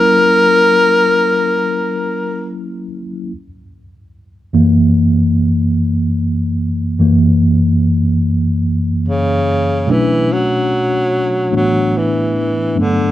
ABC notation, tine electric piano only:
X:1
M:4/4
L:1/8
Q:"Swing 16ths" 1/4=73
K:F#phr
V:1 name="Tine electric piano"
[F,^A,CE]6- [F,A,CE] z | z3 [F,,E,^A,]4- [F,,E,A,]- | [F,,E,^A,] [F,,E,A,] z6 | [B,,F,A,CD]4 [A,,E,A,B,D]3 [G,,F,A,B,D] |]